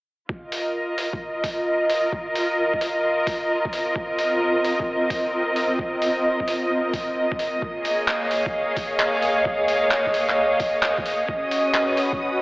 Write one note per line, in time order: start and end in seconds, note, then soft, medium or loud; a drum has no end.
0.29 8.38 F4 medium
0.29 12.42 D#5 medium
0.29 kick loud
0.48 8.71 A#4 medium
0.48 8.98 D#5 medium
0.48 open hi-hat medium
0.98 open hi-hat medium
1.13 kick medium
1.44 kick medium
1.44 open hi-hat loud
1.90 open hi-hat loud
2.12 kick loud
2.35 open hi-hat medium
2.74 kick medium
2.81 open hi-hat loud
3.27 kick medium
3.27 open hi-hat medium
3.65 kick loud
3.73 7.62 C4 medium
3.73 open hi-hat loud
3.96 kick loud
4.19 open hi-hat medium
4.65 open hi-hat medium
4.80 kick loud
5.10 kick loud
5.10 open hi-hat medium
5.56 open hi-hat medium
5.79 kick loud
6.02 open hi-hat medium
6.40 kick medium
6.48 open hi-hat medium
6.93 kick medium
6.93 open hi-hat medium
7.32 kick loud
7.39 open hi-hat medium
7.62 11.29 A#3 medium
7.62 kick loud
7.75 12.05 G#4 medium
7.75 12.42 C#5 medium
7.85 open hi-hat medium
8.07 11.29 F5 medium
8.07 clap loud
8.31 open hi-hat medium
8.46 kick loud
8.77 kick medium
8.77 open hi-hat medium
9.00 clap loud
9.22 open hi-hat medium
9.45 kick loud
9.68 open hi-hat medium
9.91 clap loud
10.06 kick medium
10.14 open hi-hat medium
10.29 clap medium
10.60 kick medium
10.60 open hi-hat medium
10.83 clap loud
10.98 kick medium
11.06 open hi-hat medium
11.28 12.42 C#4 medium
11.28 kick loud
11.40 12.42 F#4 medium
11.40 12.42 D#6 medium
11.51 open hi-hat loud
11.72 12.42 B4 medium
11.72 clap loud
11.97 open hi-hat loud
12.13 kick medium